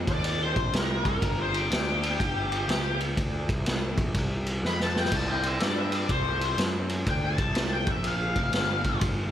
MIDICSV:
0, 0, Header, 1, 4, 480
1, 0, Start_track
1, 0, Tempo, 487013
1, 1210, Time_signature, 4, 2, 24, 8
1, 9177, End_track
2, 0, Start_track
2, 0, Title_t, "Lead electric guitar"
2, 0, Program_c, 0, 29
2, 88, Note_on_c, 0, 74, 105
2, 399, Note_off_c, 0, 74, 0
2, 422, Note_on_c, 0, 72, 83
2, 727, Note_off_c, 0, 72, 0
2, 742, Note_on_c, 0, 70, 77
2, 1047, Note_off_c, 0, 70, 0
2, 1060, Note_on_c, 0, 70, 96
2, 1366, Note_off_c, 0, 70, 0
2, 1389, Note_on_c, 0, 72, 83
2, 1535, Note_off_c, 0, 72, 0
2, 1551, Note_on_c, 0, 67, 88
2, 2942, Note_off_c, 0, 67, 0
2, 4593, Note_on_c, 0, 83, 100
2, 4737, Note_off_c, 0, 83, 0
2, 4757, Note_on_c, 0, 81, 85
2, 4899, Note_off_c, 0, 81, 0
2, 4913, Note_on_c, 0, 79, 98
2, 5077, Note_off_c, 0, 79, 0
2, 5077, Note_on_c, 0, 81, 102
2, 5219, Note_off_c, 0, 81, 0
2, 5230, Note_on_c, 0, 79, 89
2, 5375, Note_off_c, 0, 79, 0
2, 5388, Note_on_c, 0, 76, 87
2, 5551, Note_off_c, 0, 76, 0
2, 5551, Note_on_c, 0, 74, 84
2, 5696, Note_off_c, 0, 74, 0
2, 5709, Note_on_c, 0, 76, 107
2, 5863, Note_off_c, 0, 76, 0
2, 5863, Note_on_c, 0, 74, 84
2, 6024, Note_off_c, 0, 74, 0
2, 6024, Note_on_c, 0, 72, 90
2, 6482, Note_off_c, 0, 72, 0
2, 6992, Note_on_c, 0, 79, 99
2, 7136, Note_off_c, 0, 79, 0
2, 7149, Note_on_c, 0, 81, 89
2, 7604, Note_off_c, 0, 81, 0
2, 7620, Note_on_c, 0, 79, 96
2, 7769, Note_off_c, 0, 79, 0
2, 7793, Note_on_c, 0, 76, 84
2, 7949, Note_off_c, 0, 76, 0
2, 7949, Note_on_c, 0, 77, 104
2, 8869, Note_off_c, 0, 77, 0
2, 9177, End_track
3, 0, Start_track
3, 0, Title_t, "Picked electric bass"
3, 0, Program_c, 1, 34
3, 74, Note_on_c, 1, 39, 89
3, 524, Note_off_c, 1, 39, 0
3, 553, Note_on_c, 1, 34, 94
3, 713, Note_off_c, 1, 34, 0
3, 722, Note_on_c, 1, 36, 83
3, 1016, Note_off_c, 1, 36, 0
3, 1033, Note_on_c, 1, 36, 93
3, 1194, Note_off_c, 1, 36, 0
3, 1203, Note_on_c, 1, 31, 96
3, 1653, Note_off_c, 1, 31, 0
3, 1681, Note_on_c, 1, 38, 93
3, 2132, Note_off_c, 1, 38, 0
3, 2171, Note_on_c, 1, 31, 103
3, 2617, Note_off_c, 1, 31, 0
3, 2638, Note_on_c, 1, 37, 85
3, 3091, Note_off_c, 1, 37, 0
3, 3126, Note_on_c, 1, 38, 96
3, 3419, Note_off_c, 1, 38, 0
3, 3440, Note_on_c, 1, 36, 73
3, 3888, Note_off_c, 1, 36, 0
3, 3923, Note_on_c, 1, 34, 84
3, 4079, Note_off_c, 1, 34, 0
3, 4088, Note_on_c, 1, 36, 93
3, 4536, Note_off_c, 1, 36, 0
3, 4560, Note_on_c, 1, 41, 92
3, 5011, Note_off_c, 1, 41, 0
3, 5046, Note_on_c, 1, 36, 104
3, 5494, Note_off_c, 1, 36, 0
3, 5525, Note_on_c, 1, 43, 88
3, 5973, Note_off_c, 1, 43, 0
3, 6005, Note_on_c, 1, 36, 92
3, 6453, Note_off_c, 1, 36, 0
3, 6481, Note_on_c, 1, 42, 93
3, 6930, Note_off_c, 1, 42, 0
3, 6966, Note_on_c, 1, 38, 92
3, 7257, Note_off_c, 1, 38, 0
3, 7277, Note_on_c, 1, 36, 82
3, 7724, Note_off_c, 1, 36, 0
3, 7760, Note_on_c, 1, 34, 91
3, 8206, Note_off_c, 1, 34, 0
3, 8238, Note_on_c, 1, 29, 94
3, 8394, Note_off_c, 1, 29, 0
3, 8400, Note_on_c, 1, 31, 76
3, 8693, Note_off_c, 1, 31, 0
3, 8718, Note_on_c, 1, 31, 96
3, 8874, Note_off_c, 1, 31, 0
3, 8883, Note_on_c, 1, 31, 100
3, 9177, Note_off_c, 1, 31, 0
3, 9177, End_track
4, 0, Start_track
4, 0, Title_t, "Drums"
4, 74, Note_on_c, 9, 36, 112
4, 75, Note_on_c, 9, 51, 76
4, 172, Note_off_c, 9, 36, 0
4, 174, Note_off_c, 9, 51, 0
4, 237, Note_on_c, 9, 51, 95
4, 335, Note_off_c, 9, 51, 0
4, 552, Note_on_c, 9, 51, 65
4, 554, Note_on_c, 9, 36, 105
4, 650, Note_off_c, 9, 51, 0
4, 652, Note_off_c, 9, 36, 0
4, 724, Note_on_c, 9, 51, 78
4, 738, Note_on_c, 9, 38, 101
4, 822, Note_off_c, 9, 51, 0
4, 836, Note_off_c, 9, 38, 0
4, 1037, Note_on_c, 9, 36, 92
4, 1038, Note_on_c, 9, 51, 70
4, 1135, Note_off_c, 9, 36, 0
4, 1137, Note_off_c, 9, 51, 0
4, 1204, Note_on_c, 9, 36, 102
4, 1205, Note_on_c, 9, 51, 102
4, 1303, Note_off_c, 9, 36, 0
4, 1304, Note_off_c, 9, 51, 0
4, 1520, Note_on_c, 9, 51, 77
4, 1619, Note_off_c, 9, 51, 0
4, 1690, Note_on_c, 9, 51, 95
4, 1704, Note_on_c, 9, 38, 112
4, 1789, Note_off_c, 9, 51, 0
4, 1803, Note_off_c, 9, 38, 0
4, 2004, Note_on_c, 9, 51, 78
4, 2103, Note_off_c, 9, 51, 0
4, 2168, Note_on_c, 9, 36, 105
4, 2174, Note_on_c, 9, 51, 85
4, 2267, Note_off_c, 9, 36, 0
4, 2273, Note_off_c, 9, 51, 0
4, 2483, Note_on_c, 9, 51, 70
4, 2581, Note_off_c, 9, 51, 0
4, 2650, Note_on_c, 9, 51, 81
4, 2664, Note_on_c, 9, 38, 102
4, 2749, Note_off_c, 9, 51, 0
4, 2762, Note_off_c, 9, 38, 0
4, 2962, Note_on_c, 9, 51, 62
4, 3060, Note_off_c, 9, 51, 0
4, 3128, Note_on_c, 9, 36, 103
4, 3128, Note_on_c, 9, 51, 89
4, 3227, Note_off_c, 9, 36, 0
4, 3227, Note_off_c, 9, 51, 0
4, 3440, Note_on_c, 9, 36, 107
4, 3446, Note_on_c, 9, 51, 75
4, 3539, Note_off_c, 9, 36, 0
4, 3544, Note_off_c, 9, 51, 0
4, 3609, Note_on_c, 9, 51, 96
4, 3622, Note_on_c, 9, 38, 100
4, 3707, Note_off_c, 9, 51, 0
4, 3721, Note_off_c, 9, 38, 0
4, 3919, Note_on_c, 9, 36, 116
4, 3920, Note_on_c, 9, 51, 77
4, 4017, Note_off_c, 9, 36, 0
4, 4018, Note_off_c, 9, 51, 0
4, 4085, Note_on_c, 9, 51, 95
4, 4086, Note_on_c, 9, 36, 94
4, 4184, Note_off_c, 9, 51, 0
4, 4185, Note_off_c, 9, 36, 0
4, 4401, Note_on_c, 9, 51, 71
4, 4499, Note_off_c, 9, 51, 0
4, 4581, Note_on_c, 9, 38, 57
4, 4680, Note_off_c, 9, 38, 0
4, 4733, Note_on_c, 9, 38, 68
4, 4832, Note_off_c, 9, 38, 0
4, 4891, Note_on_c, 9, 38, 82
4, 4975, Note_off_c, 9, 38, 0
4, 4975, Note_on_c, 9, 38, 87
4, 5043, Note_on_c, 9, 49, 97
4, 5043, Note_on_c, 9, 51, 106
4, 5045, Note_on_c, 9, 36, 109
4, 5074, Note_off_c, 9, 38, 0
4, 5141, Note_off_c, 9, 49, 0
4, 5141, Note_off_c, 9, 51, 0
4, 5143, Note_off_c, 9, 36, 0
4, 5356, Note_on_c, 9, 51, 78
4, 5454, Note_off_c, 9, 51, 0
4, 5522, Note_on_c, 9, 51, 92
4, 5536, Note_on_c, 9, 38, 94
4, 5621, Note_off_c, 9, 51, 0
4, 5634, Note_off_c, 9, 38, 0
4, 5834, Note_on_c, 9, 51, 74
4, 5933, Note_off_c, 9, 51, 0
4, 6003, Note_on_c, 9, 51, 92
4, 6005, Note_on_c, 9, 36, 101
4, 6102, Note_off_c, 9, 51, 0
4, 6103, Note_off_c, 9, 36, 0
4, 6321, Note_on_c, 9, 51, 72
4, 6419, Note_off_c, 9, 51, 0
4, 6484, Note_on_c, 9, 51, 89
4, 6498, Note_on_c, 9, 38, 100
4, 6583, Note_off_c, 9, 51, 0
4, 6597, Note_off_c, 9, 38, 0
4, 6795, Note_on_c, 9, 51, 71
4, 6894, Note_off_c, 9, 51, 0
4, 6965, Note_on_c, 9, 36, 109
4, 6965, Note_on_c, 9, 51, 85
4, 7064, Note_off_c, 9, 36, 0
4, 7064, Note_off_c, 9, 51, 0
4, 7275, Note_on_c, 9, 51, 70
4, 7277, Note_on_c, 9, 36, 106
4, 7374, Note_off_c, 9, 51, 0
4, 7376, Note_off_c, 9, 36, 0
4, 7441, Note_on_c, 9, 51, 84
4, 7455, Note_on_c, 9, 38, 109
4, 7540, Note_off_c, 9, 51, 0
4, 7554, Note_off_c, 9, 38, 0
4, 7754, Note_on_c, 9, 51, 73
4, 7757, Note_on_c, 9, 36, 117
4, 7852, Note_off_c, 9, 51, 0
4, 7856, Note_off_c, 9, 36, 0
4, 7923, Note_on_c, 9, 51, 87
4, 8021, Note_off_c, 9, 51, 0
4, 8236, Note_on_c, 9, 51, 73
4, 8238, Note_on_c, 9, 36, 100
4, 8335, Note_off_c, 9, 51, 0
4, 8337, Note_off_c, 9, 36, 0
4, 8404, Note_on_c, 9, 51, 92
4, 8418, Note_on_c, 9, 38, 98
4, 8503, Note_off_c, 9, 51, 0
4, 8517, Note_off_c, 9, 38, 0
4, 8716, Note_on_c, 9, 51, 70
4, 8718, Note_on_c, 9, 36, 91
4, 8815, Note_off_c, 9, 51, 0
4, 8817, Note_off_c, 9, 36, 0
4, 8882, Note_on_c, 9, 51, 99
4, 8886, Note_on_c, 9, 36, 104
4, 8980, Note_off_c, 9, 51, 0
4, 8985, Note_off_c, 9, 36, 0
4, 9177, End_track
0, 0, End_of_file